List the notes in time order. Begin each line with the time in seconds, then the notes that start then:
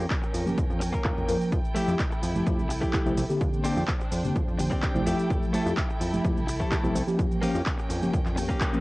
Already playing: C#4 A#4 G5
0.10 kick, clap, shaker
0.22 muted clean electric guitar stroke, shaker
0.33 F2, muted clean electric guitar stroke, open hi-hat, shaker
0.46 F1 F3 A#3 C#4 G4, shaker
0.58 F2, kick, shaker
0.70 F2, shaker
0.80 muted clean electric guitar stroke, open hi-hat, shaker
0.93 A#3 C#4 A#4, kick, shaker
1.04 F2, kick, clap, shaker
1.17 F1, shaker
1.28 F2 F3 A#3 C#4 A#4, open hi-hat, shaker
1.41 shaker
1.52 F2 E4 A4, kick, shaker
1.65 shaker
1.75 F3 A3 E4 G4, open hi-hat, shaker
1.88 F2, shaker
1.99 kick, clap, shaker
2.11 muted clean electric guitar stroke, shaker
2.22 F2, muted clean electric guitar stroke, open hi-hat, shaker
2.35 F1 F3 A3 E4 G4, shaker
2.46 F2 F3 A3 E4 G4, kick, shaker
2.59 C2, shaker
2.69 muted clean electric guitar stroke, open hi-hat, shaker
2.81 F3 A3 E4 G4, kick, shaker
2.93 kick, clap, shaker
3.06 C2 F3 A3 E4 G4, shaker
3.17 C2, open hi-hat, shaker
3.29 D3 A#3 C4 G4, shaker
3.41 F2 D4 C5 G5, kick, shaker
3.54 shaker
3.64 D3 A#3 C4 D4 G4, open hi-hat, shaker
3.77 F2, shaker
3.88 kick, clap, shaker
4.00 muted clean electric guitar stroke, shaker
4.11 F2, muted clean electric guitar stroke, open hi-hat, shaker
4.24 F1 D3 A#3 C4 G4, shaker
4.36 F2, kick, shaker
4.48 F2, shaker
4.58 D3 A#3 C4 G4, muted clean electric guitar stroke, open hi-hat, shaker
4.71 C4 D4 G4, kick, shaker
4.82 kick, clap, shaker
4.94 C2 F3 A3 E4 G4, shaker
5.06 F2 A3 E4 G4 A4, open hi-hat, shaker
5.19 shaker
5.30 F2, kick, shaker
5.43 shaker
5.53 F3 A3 E4 G4 A4, open hi-hat, shaker
5.66 F2, shaker
5.77 kick, clap, shaker
5.89 muted clean electric guitar stroke, shaker
6.00 F2, muted clean electric guitar stroke, open hi-hat, shaker
6.13 F1 F3 A3 E4 G4, shaker
6.24 F2 F3 A3 E4 G4, kick, shaker
6.36 C2, shaker
6.47 muted clean electric guitar stroke, open hi-hat, shaker
6.60 F3 A3 E4 G4 A4, kick, shaker
6.72 kick, clap, shaker
6.84 C2 F3 A3 E4 G4, shaker
6.95 C2, open hi-hat, shaker
7.07 F3 A#3 C#4 G4, shaker
7.19 F2 A#3 C#4 G5, kick, shaker
7.32 shaker
7.42 F3 A#3 C#4 G4, open hi-hat, shaker
7.55 F2, shaker
7.66 kick, clap, shaker
7.78 muted clean electric guitar stroke, shaker
7.89 F2, muted clean electric guitar stroke, open hi-hat, shaker
8.02 F1 F3 A#3 C#4 G4, shaker
8.13 F2, kick, shaker
8.26 F2, clap, shaker
8.36 F3 A#3 C#4 G4, muted clean electric guitar stroke, open hi-hat, shaker
8.48 A#3 C#4 G4, kick, shaker
8.61 kick, clap, shaker
8.73 F3 A#3 C#4 G4, shaker